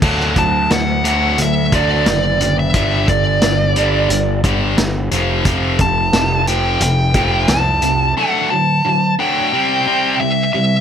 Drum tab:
CC |x---------------|----------------|----------------|----------------|
HH |--x-x-x-x-x-x-x-|x-x-x-x-x-x-x-x-|x-x-x-x-x-x-x-x-|----------------|
SD |-o--o-------o---|----o-------o---|----o-------o---|----------------|
BD |o-o-------o-----|o-o-------o-----|o-o-------o-----|----------------|